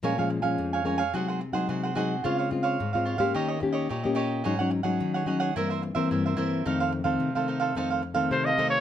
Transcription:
<<
  \new Staff \with { instrumentName = "Trumpet" } { \time 4/4 \key bes \minor \tempo 4 = 109 r1 | r1 | r1 | r2. c''16 ees''8 des''16 | }
  \new Staff \with { instrumentName = "Cavaquinho" } { \time 4/4 \key bes \minor <bes' des'' f'' aes''>16 <des'' f'' aes''>16 r16 <des'' f'' aes''>8 <des'' f'' aes''>16 <bes' des'' f'' aes''>16 <des'' f'' aes''>16 <ges' aes' c'' ges''>16 <aes' c'' ges''>16 r16 <aes' c'' ges''>16 <ges' aes' c'' ges''>16 <aes' c'' ges''>16 <ges' aes' c'' ges''>8 | <f' c'' des'' f''>16 <c'' des'' f''>16 r16 <c'' des'' f''>8 <c'' des'' f''>16 <f' c'' des'' f''>16 <c'' des'' f''>16 <ees' g' des'' ees''>16 <g' des'' ees''>16 r16 <g' des'' ees''>16 <ees' g' des'' ees''>16 <g' des'' ees''>16 <ees' g' des'' ees''>8 | <ees' aes' des'' ges''>16 <aes' des'' ges''>16 r16 <aes' des'' ges''>8 <aes' des'' ges''>16 <ees' aes' des'' ges''>16 <aes' des'' ges''>16 <e' bes' c'' e''>16 <bes' c'' e''>16 r16 <bes' c'' e''>16 <e' bes' c'' e''>16 <bes' c'' e''>16 <e' bes' c'' e''>8 | <ees' a' c'' f''>16 <a' c'' f''>16 r16 <a' c'' f''>8 <a' c'' f''>16 <ees' a' c'' f''>16 <a' c'' f''>16 <ees' a' c'' f''>16 <a' c'' f''>16 r16 <a' c'' f''>16 <ees' a' c'' f''>16 <a' c'' f''>16 <ees' a' c'' f''>8 | }
  \new Staff \with { instrumentName = "Nylon-string guitar" } { \time 4/4 \key bes \minor << { <f aes des'>16 <f aes des'>8 <f aes des'>8. <f aes des'>16 r16 <ges aes ees'>8 r16 <ges aes ees'>8. <ges aes ees'>16 r16 | <aes c' f'>8 <aes c' f'>8 r16 <aes c' f'>8 <bes des' g'>8. <bes des' g'>8 r16 <bes des' g'>8. | <ges des' ees'>16 <ges des' ees'>8 <ges des' ees'>8. <ges des' ees'>8 <e bes c'>8. <e bes c'>8. <e bes c'>8 | <ees a c'>8. <ees a c'>8 <ees a c'>8. <ees a c'>8 r16 <ees a c'>8. <ees a c'>8 | } \\ { bes,4 f,4 c4 c4 | des4 aes,4 ees4 bes,4 | aes,4 ees4 g,4 g,4 | f,4 c4 f,4 c4 | } >> }
>>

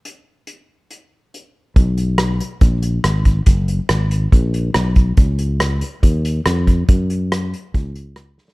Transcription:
<<
  \new Staff \with { instrumentName = "Fretless electric bass" } { \clef bass \time 4/4 \key gis \dorian \tempo 4 = 140 r1 | b,,2 ais,,4 gis,,4 | fis,,4 gis,,4 ais,,4 b,,4 | cis,2 dis,4 eis,4 |
fis,2 cis,2 | }
  \new DrumStaff \with { instrumentName = "Drums" } \drummode { \time 4/4 hh4 hh4 hh4 hh4 | <hh bd>8 hh8 <hh ss>8 hh8 <hh bd>8 hh8 <hh ss>8 <hh bd>8 | <hh bd>8 hh8 <hh ss>8 hh8 <hh bd>8 hh8 <hh ss>8 <hh bd>8 | <hh bd>8 hh8 <hh ss>8 hh8 <hh bd>8 hh8 <hh ss>8 <hh bd>8 |
<hh bd>8 hh8 <hh ss>8 hh8 <hh bd>8 hh8 <hh ss>8 sn16 sn16 | }
>>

